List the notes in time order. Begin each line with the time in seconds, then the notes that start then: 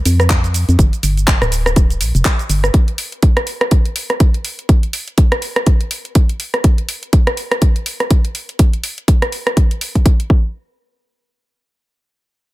0.05 F2, open hi-hat, shaker
0.20 cross-stick, closed hi-hat, shaker
0.30 kick, clap, closed hi-hat, shaker
0.44 closed hi-hat, shaker
0.54 open hi-hat, shaker
0.69 F2, closed hi-hat, shaker
0.79 G1, kick, closed hi-hat, shaker
0.93 closed hi-hat, shaker
1.03 G1, open hi-hat, shaker
1.17 closed hi-hat, shaker
1.27 kick, clap, closed hi-hat, shaker
1.42 D1, cross-stick, closed hi-hat, shaker
1.52 open hi-hat, shaker
1.66 cross-stick, closed hi-hat, shaker
1.76 kick, closed hi-hat, shaker
1.90 closed hi-hat, shaker
2.01 A#1, open hi-hat, shaker
2.15 F1, closed hi-hat, shaker
2.25 kick, clap, closed hi-hat, shaker
2.39 closed hi-hat, shaker
2.50 G1, open hi-hat, shaker
2.64 cross-stick, closed hi-hat, shaker
2.74 kick, closed hi-hat
2.88 closed hi-hat
2.98 open hi-hat
3.12 closed hi-hat
3.23 kick, closed hi-hat
3.37 cross-stick, closed hi-hat
3.47 open hi-hat
3.61 cross-stick, closed hi-hat
3.71 kick, closed hi-hat
3.85 closed hi-hat
3.96 open hi-hat
4.10 cross-stick, closed hi-hat
4.20 kick, closed hi-hat
4.34 closed hi-hat
4.45 open hi-hat
4.59 closed hi-hat
4.69 kick, closed hi-hat
4.83 closed hi-hat
4.93 open hi-hat
5.08 closed hi-hat
5.18 kick, closed hi-hat
5.32 cross-stick, closed hi-hat
5.42 open hi-hat
5.56 cross-stick, closed hi-hat
5.66 kick, closed hi-hat
5.81 closed hi-hat
5.91 open hi-hat
6.05 closed hi-hat
6.15 kick, closed hi-hat
6.29 closed hi-hat
6.40 open hi-hat
6.54 cross-stick, closed hi-hat
6.64 kick, closed hi-hat
6.78 closed hi-hat
6.89 open hi-hat
7.03 closed hi-hat
7.13 kick, closed hi-hat
7.27 cross-stick, closed hi-hat
7.37 open hi-hat
7.51 cross-stick, closed hi-hat
7.62 kick, closed hi-hat
7.76 closed hi-hat
7.86 open hi-hat
8.00 cross-stick, closed hi-hat
8.11 kick, closed hi-hat
8.25 closed hi-hat
8.35 open hi-hat
8.49 closed hi-hat
8.59 kick, closed hi-hat
8.73 closed hi-hat
8.84 open hi-hat
8.98 closed hi-hat
9.08 kick, closed hi-hat
9.22 cross-stick, closed hi-hat
9.32 open hi-hat
9.47 cross-stick, closed hi-hat
9.57 kick, closed hi-hat
9.71 closed hi-hat
9.81 open hi-hat
9.95 kick, closed hi-hat
10.06 kick, closed hi-hat
10.20 closed hi-hat
10.30 kick